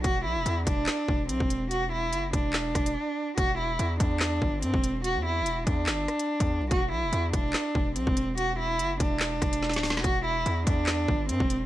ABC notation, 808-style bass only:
X:1
M:4/4
L:1/16
Q:1/4=144
K:Em
V:1 name="808-style bass" clef=bass
E,,,2 B,,, E,,, E,,2 E,,,2 z2 E,,,2 B,,, E,,,3- | E,,,4 F,,,2 E,,,4 E,,,2 z4 | E,,,4 E,,2 E,,4 G,,,2 G,, E,,,3- | E,,, E,,2- E,,/2 E,,,2- E,,,/2 E,,2 G,,,2 z3 E,,2 B,,, |
E,,,2 B,,, E,,, E,,2 E,,,2 z2 E,,,2 B,,, E,,,3- | E,,,4 F,,,2 E,,,4 E,,,3 D,,,3/2 E,,,3/2 | E,,,4 E,,2 E,,4 G,,,2 G,, E,,,3 |]